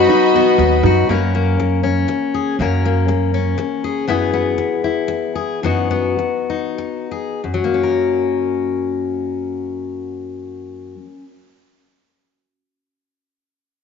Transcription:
Already playing: F#3 B3 D#4 F#4 D#5 B5
0.09 D#4, muted steel-string acoustic guitar stroke
0.34 B3
0.58 D#2 F#3, muted steel-string acoustic guitar stroke
0.83 F#2 D#4 F#4
1.09 F#2 A#3 C#4 A#4
1.35 A#3
1.60 muted steel-string acoustic guitar stroke
1.83 C#4
2.08 muted steel-string acoustic guitar stroke
2.34 G#4
2.59 F#2 A#3 C#4 A#4
2.85 A#3
3.08 muted steel-string acoustic guitar stroke
3.34 C#4
3.58 muted steel-string acoustic guitar stroke
3.84 G#4
4.07 F#2 B3 E4 G#4
4.33 B3
4.58 muted steel-string acoustic guitar stroke
4.84 E4
5.08 muted steel-string acoustic guitar stroke
5.35 G#4
5.63 F#2 B3 D#4 F#4
5.91 B3
6.19 muted steel-string acoustic guitar stroke
6.50 D#4
6.78 muted steel-string acoustic guitar stroke
7.11 G#4
7.44 F#2
7.54 F#3
7.64 A#3
7.74 C#4
7.83 A#4

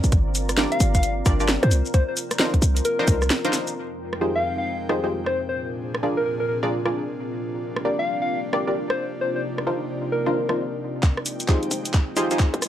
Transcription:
Already playing: C4 F4 A#4 D5
0.04 G#1, closed hi-hat, shaker
0.12 G1, kick, closed hi-hat, shaker
0.35 open hi-hat, shaker
0.49 cross-stick, closed hi-hat, shaker
0.58 D4 F4 G4 A#4 D5, snare, shaker
0.72 F5, closed hi-hat
0.80 G1, open hi-hat, shaker
0.95 F5, kick, closed hi-hat, shaker
1.03 closed hi-hat, shaker
1.26 G1 D4 F4 G4 A#4 D5, kick, cross-stick, open hi-hat, shaker
1.40 D4 F4 G4 A#4 D5, shaker
1.49 snare, shaker
1.63 G2 C5, cross-stick, closed hi-hat
1.71 C2, open hi-hat, shaker
1.86 shaker
1.94 C5, kick, closed hi-hat, shaker
2.08 C5
2.17 open hi-hat, shaker
2.31 cross-stick, closed hi-hat, shaker
2.39 D4 D#4 F4 A#4 C5, snare, shaker
2.54 kick, closed hi-hat
2.62 C2, open hi-hat, shaker
2.77 closed hi-hat, shaker
2.85 A#4, closed hi-hat, shaker
2.99 D4 D#4 F4 A#4 C5, cross-stick
3.08 C2, kick, open hi-hat, shaker
3.22 cross-stick, shaker
3.30 snare, shaker
3.45 D4 D#4 F4 A#4 C5, closed hi-hat
3.53 snare, open hi-hat, shaker
3.67 closed hi-hat, shaker
3.76 F2 G#3 C4 D#4 G5
4.13 cross-stick
4.21 D#4 F4 G4 G#4 C5
4.35 F5
4.58 F5
4.89 D#4 F4 G4 G#4 C5, cross-stick
5.04 D#4 F4 G4 G#4 C5
5.26 C5, cross-stick
5.35 A#2 C4 D4 F4 G#4
5.49 C5
5.58 D5
5.95 cross-stick
6.03 D4 F4 G#4 A#4 D5
6.17 A#4
6.26 A#4
6.40 A#4
6.48 A#4
6.63 D4 F4 G#4 A#4 D5, cross-stick
6.86 D4 F4 G#4 A#4 D5, cross-stick
7.39 G3 A#3 G4
7.76 cross-stick
7.85 D4 F4 G4 A#4 D5
7.99 F5
8.22 F5
8.53 D4 F4 G4 A#4 D5, cross-stick
8.67 D4 F4 G4 A#4 D5
8.90 C5, cross-stick
8.98 C3 A#3 D#4
9.21 C5
9.36 C5
9.58 cross-stick
9.67 D4 D#4 F4 A#4 C5
10.12 A#4
10.26 D4 D#4 F4 A#4 C5, cross-stick
10.49 D4 D#4 F4 A#4 C5, cross-stick
11.03 F1 G#3 C4 D#4 G5, kick, clap, shaker
11.17 cross-stick
11.26 open hi-hat, shaker
11.40 closed hi-hat, shaker
11.48 D#4 F4 G4 G#4 C5, kick, clap, shaker
11.63 closed hi-hat
11.71 F1, open hi-hat, shaker
11.85 closed hi-hat, shaker
11.94 kick, clap, shaker
12.16 F1 D#4 F4 G4 G#4 C5, open hi-hat, shaker
12.31 D#4 F4 G4 G#4 C5, closed hi-hat, shaker
12.39 kick, clap, shaker
12.54 F2, closed hi-hat
12.62 A#1 D4 F4, cross-stick, open hi-hat, shaker

